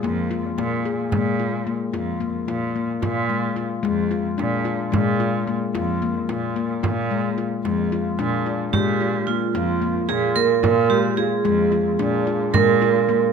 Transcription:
0.03 cello F2, handpan A#3, frame drum
0.31 handpan F4
0.58 cello A#2, handpan A#3, frame drum
0.85 handpan G#4
1.12 cello A#2, handpan G#3, frame drum
1.39 handpan F4, frame drum
1.67 handpan A#3
1.93 cello F2, handpan F4, frame drum
2.20 handpan A#3, frame drum
2.48 cello A#2, handpan F4, frame drum
2.76 handpan A#3
3.02 cello A#2, handpan F4, frame drum
3.29 handpan G#3, frame drum
3.56 handpan F4
3.83 cello F2, handpan G#3, frame drum
4.11 handpan F4, frame drum
4.38 cello A#2, handpan D4, frame drum
4.65 handpan F4
4.92 cello A#2, handpan G#3, frame drum
5.20 handpan F4, frame drum
5.47 handpan A#3
5.75 cello F2, handpan F4, frame drum
6.02 handpan A#3, frame drum
6.29 cello A#2, handpan F4, frame drum
6.56 handpan A#3
6.83 cello A#2, handpan F4, frame drum
7.11 handpan G#3
7.38 handpan F4
7.64 cello F2, handpan G#3, frame drum
7.92 handpan F4
8.19 cello A#2, handpan D4, frame drum
8.46 handpan F4
8.73 cello A#2, handpan G#3, vibraphone G4, frame drum
9.00 handpan F4, frame drum
9.27 handpan A#3, vibraphone F4
9.54 cello F2, handpan F4, frame drum
9.82 handpan A#3
10.09 cello A#2, handpan F4, vibraphone G#4, frame drum
10.36 handpan A#3, vibraphone A#4
10.63 cello A#2, handpan F4, frame drum
10.90 handpan G#3, vibraphone G4, frame drum
11.17 handpan F4, vibraphone G#4
11.44 cello F2, handpan G#3, frame drum
11.72 handpan F4, frame drum
11.99 cello A#2, handpan D4, frame drum
12.27 handpan F4
12.53 cello A#2, handpan G#3, vibraphone A#4, frame drum
12.81 handpan F4, frame drum
13.09 handpan A#3

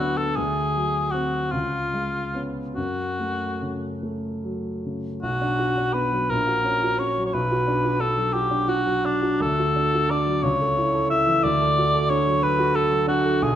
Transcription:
Already playing: grand piano D2 F#3
0.00 grand piano B3 D4, cor anglais F#4
0.17 cor anglais A4
0.36 grand piano D2, cor anglais G#4
0.76 grand piano F#3
1.11 grand piano C4, cor anglais F#4
1.51 grand piano C#2, cor anglais F4
1.93 grand piano G#3
2.34 grand piano B3 C#4
2.75 grand piano F#2, cor anglais F#4
3.20 grand piano A3
3.62 grand piano C#3
4.03 grand piano A3
4.44 grand piano F#3
4.86 grand piano C#3
5.22 grand piano B1, cor anglais F#4
5.41 grand piano D4
5.59 grand piano F#4
5.78 grand piano D4
5.93 grand piano B3, cor anglais B4
6.11 grand piano F#3
6.29 grand piano A#1, cor anglais A#4
6.47 grand piano F#4
6.64 grand piano C#4
6.83 grand piano F#4
6.99 grand piano C#4, cor anglais C#5
7.18 grand piano F#3
7.26 cor anglais C#5
7.33 grand piano B1, cor anglais B4
7.51 grand piano F#4
7.68 grand piano D4
7.84 grand piano F#4
8.00 grand piano D4, cor anglais A4
8.17 grand piano F#3
8.33 grand piano F#4, cor anglais G4
8.51 grand piano D4
8.68 grand piano F#4, cor anglais F#4
8.86 grand piano F#3
9.05 grand piano D4, cor anglais D4
9.22 grand piano F#4
9.40 grand piano D2, cor anglais A4
9.59 grand piano F#4
9.76 grand piano D4
9.94 grand piano F#4
10.10 grand piano D4, cor anglais D5
10.26 grand piano F#3
10.43 grand piano C#2, cor anglais C#5
10.61 grand piano A4
10.77 grand piano E4
10.94 grand piano A4
11.10 grand piano E4, cor anglais E5
11.27 grand piano E3
11.43 grand piano D2, cor anglais D5
11.61 grand piano A4
11.78 grand piano F#4
11.94 grand piano A4
12.10 grand piano D4, cor anglais C#5
12.27 grand piano F#3
12.43 grand piano A4, cor anglais B4
12.59 grand piano F#4
12.75 cor anglais A4, grand piano A4
12.92 grand piano F#3
13.07 grand piano D4, cor anglais F#4
13.25 grand piano A4
13.42 grand piano B1, cor anglais G#4

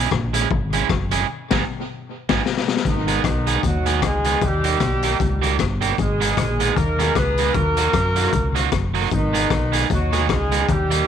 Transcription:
0.11 fingered electric bass A#1, kick, cross-stick
0.33 clean electric guitar G#3 C#4 E4 G#4, closed hi-hat
0.51 fingered electric bass G#1, kick
0.73 clean electric guitar G#3 C#4 E4 G#4, closed hi-hat
0.89 fingered electric bass F#1, kick, cross-stick
1.11 clean electric guitar G#3 C#4 E4 G#4, closed hi-hat
1.51 fingered electric bass G#1, clean electric guitar G#3 B3 D#4 G#4, kick, snare, crash
2.29 fingered electric bass G#1, clean electric guitar G#3 B3 D#4 G#4, kick, snare, crash
2.46 snare
2.57 snare
2.68 snare
2.77 snare
2.85 fingered electric bass G#1, horn section D#3 B3 D#4, kick, closed hi-hat
3.08 clean electric guitar G#3 B3 D#4 G#4, closed hi-hat
3.24 fingered electric bass B1, muted clean electric guitar stroke, kick, cross-stick, closed hi-hat
3.47 clean electric guitar G#3 B3 D#4 G#4, closed hi-hat
3.63 fingered electric bass D#2, horn section F#3 D#4 F#4, kick, closed hi-hat
3.86 clean electric guitar G#3 B3 D#4 G#4, closed hi-hat
4.02 fingered electric bass C#2, horn section G#3 D#4 G#4, kick, cross-stick, closed hi-hat
4.24 clean electric guitar G#3 B3 D#4 G#4, closed hi-hat
4.41 fingered electric bass D#2, horn section G3 D#4 G4, kick, closed hi-hat
4.64 clean electric guitar G3 A#3 D#4 G4, closed hi-hat
4.80 fingered electric bass B1, muted clean electric guitar stroke, kick, cross-stick, closed hi-hat
5.02 clean electric guitar G3 A#3 D#4 G4, closed hi-hat
5.20 fingered electric bass C#2, kick, closed hi-hat
5.42 clean electric guitar G3 A#3 D#4 G4, cross-stick, closed hi-hat
5.59 fingered electric bass G1, muted clean electric guitar stroke, kick, cross-stick, closed hi-hat
5.81 clean electric guitar G3 A#3 D#4 G4, closed hi-hat
5.98 fingered electric bass G#1, horn section G#3 D#4 G#4, kick, closed hi-hat
6.20 clean electric guitar G#3 B3 D#4 G#4, closed hi-hat
6.37 fingered electric bass A#1, muted clean electric guitar stroke, kick, cross-stick, closed hi-hat
6.60 clean electric guitar G#3 B3 D#4 G#4, closed hi-hat
6.76 fingered electric bass D#2, horn section A#3 D#4 A#4, kick, closed hi-hat
6.99 clean electric guitar G#3 B3 D#4 G#4, cross-stick, closed hi-hat
7.15 fingered electric bass C#2, horn section B3 G#4 B4, muted clean electric guitar stroke, kick, cross-stick, closed hi-hat
7.37 clean electric guitar G#3 B3 D#4 G#4, closed hi-hat
7.54 fingered electric bass D#2, horn section A#3 F#4 A#4, kick, closed hi-hat
7.77 clean electric guitar F#3 A#3 D#4 F#4, closed hi-hat
7.93 fingered electric bass F#2, muted clean electric guitar stroke, kick, cross-stick, closed hi-hat
8.16 clean electric guitar F#3 A#3 D#4 F#4, closed hi-hat
8.24 cross-stick
8.33 fingered electric bass C#2, kick, closed hi-hat
8.55 clean electric guitar F#3 A#3 D#4 F#4, cross-stick, closed hi-hat
8.72 fingered electric bass F#1, muted clean electric guitar stroke, kick, cross-stick, closed hi-hat
8.94 clean electric guitar F#3 A#3 D#4 F#4, open hi-hat
9.11 fingered electric bass G#1, horn section D#3 B3 D#4, kick, closed hi-hat
9.33 clean electric guitar G#3 B3 D#4 G#4, closed hi-hat
9.50 fingered electric bass B1, muted clean electric guitar stroke, kick, cross-stick, closed hi-hat
9.72 clean electric guitar G#3 B3 D#4 G#4, closed hi-hat
9.90 fingered electric bass D#2, horn section F#3 D#4 F#4, kick, closed hi-hat
10.12 clean electric guitar G#3 B3 D#4 G#4, cross-stick, closed hi-hat
10.29 fingered electric bass C#2, horn section G#3 D#4 G#4, muted clean electric guitar stroke, kick, cross-stick, closed hi-hat
10.51 clean electric guitar G#3 B3 D#4 G#4, closed hi-hat
10.68 fingered electric bass D#2, horn section G3 D#4 G4, kick, closed hi-hat
10.90 clean electric guitar G3 A#3 D#4 G4, closed hi-hat

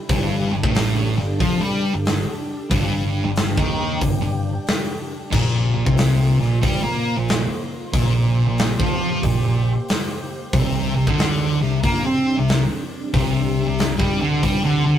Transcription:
Already playing: string machine G3
0.09 fingered electric bass G1, distorted electric guitar G2, string machine D4 A4, kick, open hi-hat
0.52 fingered electric bass G1, distorted electric guitar G2
0.63 fingered electric bass A1, distorted electric guitar A2, kick
0.75 snare, open hi-hat
1.18 fingered electric bass G1, distorted electric guitar G2, snare
1.40 fingered electric bass F2, distorted electric guitar F3, kick, open hi-hat
1.61 fingered electric bass G2, distorted electric guitar G3
1.94 fingered electric bass G1, distorted electric guitar G2
2.05 snare, open hi-hat
2.70 fingered electric bass G1, distorted electric guitar G2, string machine G4, kick, open hi-hat
3.25 fingered electric bass G1, distorted electric guitar G2
3.36 snare, open hi-hat
3.57 fingered electric bass D#2, distorted electric guitar D#3, kick
4.01 fingered electric bass G1, distorted electric guitar G2, kick, open hi-hat
4.22 fingered electric bass G1, distorted electric guitar G2
4.67 snare, open hi-hat
5.31 fingered electric bass A#1, distorted electric guitar A#2, string machine A#3 F4 C5, kick, crash
5.75 fingered electric bass A#1, distorted electric guitar A#2
5.86 fingered electric bass C2, distorted electric guitar C3, kick
5.97 snare, open hi-hat
6.39 fingered electric bass A#1, distorted electric guitar A#2, snare
6.62 fingered electric bass G2, distorted electric guitar G3, kick, open hi-hat
6.84 fingered electric bass A#2, distorted electric guitar A#3
7.17 fingered electric bass A#1, distorted electric guitar A#2
7.28 snare, open hi-hat
7.93 fingered electric bass A#1, distorted electric guitar A#2, string machine G4, kick, open hi-hat
8.47 fingered electric bass A#1, distorted electric guitar A#2
8.58 snare, open hi-hat
8.80 fingered electric bass F2, distorted electric guitar F3, kick
9.23 fingered electric bass A#1, distorted electric guitar A#2, kick, open hi-hat
9.44 fingered electric bass A#1, distorted electric guitar A#2
9.88 snare, open hi-hat
10.53 fingered electric bass C2, string machine C3 G3 D4, distorted electric guitar C3, kick, open hi-hat
10.95 fingered electric bass C2, distorted electric guitar C3
11.07 fingered electric bass D2, distorted electric guitar D3, kick
11.18 snare, open hi-hat
11.61 fingered electric bass C2, distorted electric guitar C3, snare
11.83 fingered electric bass A#2, distorted electric guitar A#3, kick, open hi-hat
12.05 fingered electric bass C3, distorted electric guitar C4
12.36 fingered electric bass C2, distorted electric guitar C3
12.48 snare, open hi-hat
13.14 fingered electric bass C2, distorted electric guitar C3, kick, open hi-hat
13.67 fingered electric bass C2, distorted electric guitar C3
13.79 snare, open hi-hat
13.98 fingered electric bass G2, distorted electric guitar G3, kick
14.21 fingered electric bass D2, distorted electric guitar D3
14.42 fingered electric bass G2, distorted electric guitar G3, kick, open hi-hat
14.64 fingered electric bass D2, distorted electric guitar D3
14.85 fingered electric bass D2, distorted electric guitar D3

